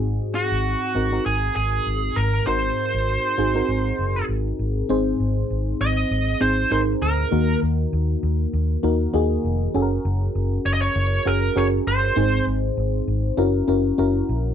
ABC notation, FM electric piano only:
X:1
M:4/4
L:1/16
Q:"Swing 16ths" 1/4=99
K:Abmix
V:1 name="FM electric piano"
[CEGA]4- [CEGA] z [CEGB] [CEGB]6- [CEGB] z2 | [CEGB]6 [CEGA] [CEGB]6- [CEGB] z2 | [CEAc]6- [CEAc] z3 [CEAc]2 [CEAB]4 | [B,EGB]6- [B,EGB] z3 [B,EGB]2 [B,EGA]4 |
[DGA=AB]6- [DG_A=AB] z3 [DG_AB]2 [DGAB]4 | [CEAc]6- [CEAc] z [D_FGB]2 [DFGB]2 [DFGB]4 |]
V:2 name="FM electric piano" clef=bass
A,,4 z8 z2 A,,2- | A,,4 z12 | A,,6 z8 z2 | E,6 z8 z2 |
z16 | A,,6 z8 z2 |]